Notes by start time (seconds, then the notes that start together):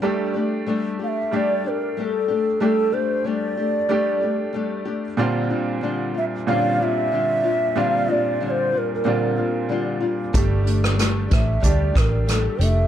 0.02 G3 A3 D4 G4
0.34 A3 D4 G4
0.66 G3 A3 D4 G4
0.99 A3 D4 G4
1.03 F5
1.08 E5
1.31 G3 A3 D4 G4
1.36 D5
1.64 D4 G4
1.68 A#4
1.97 G3 A3 D4 G4 A#4
2.04 A4
2.28 A3 D4 G4
2.60 G3 A3 D4 G4 A4
2.92 A3 D4 G4 C5
3.24 G3 A3 D4 G4 D5
3.57 A3 D4 G4
3.89 G3 A3 D4 G4
4.21 A3 D4 G4
4.53 G3 A3 D4 G4
4.85 A3 D4 G4
5.17 A#2 D3 G3 C4 D4 F4
5.50 G3 D4 F4
5.81 D3 G3 D4 F4
6.14 G3 D4 F4 E5
6.47 A#2 D3 G3 C4 C#4 D4 F4 F5
6.55 D4
6.79 G3 D4 F4 E5
7.12 D3 G3 D4 F4
7.43 G3 D4 F4
7.75 A#2 D3 G3 C4 D4 F4
7.80 F5
8.08 G3 D4 F4
8.12 D5
8.40 D3 G3 D4 F4
8.45 D5
8.50 C5
8.72 G3 D4 F4
8.78 A#4
8.95 A#4
9.04 A#2 D3 G3 C4 D4 F4
9.37 G3 D4 F4
9.69 D3 G3 D4 F4
10.00 G3 D4 F4
10.33 G1 G3 A3 D4 G4, kick, closed hi-hat
10.64 A3 D4 G4, closed hi-hat
10.84 cross-stick
10.96 G3 A3 D4 G4, closed hi-hat
11.00 cross-stick
11.28 A1 A3 D4 G4, kick, closed hi-hat
11.33 E5, cross-stick
11.60 D2 G3 A3 D4 G4, kick, closed hi-hat
11.65 G4 E5
11.70 D5
11.94 A1 D4 G4, kick, cross-stick, closed hi-hat
11.98 A#4
12.26 G3 A3 D4 G4 A4, cross-stick, closed hi-hat
12.58 F1 A3 D4 G4, closed hi-hat
12.63 E5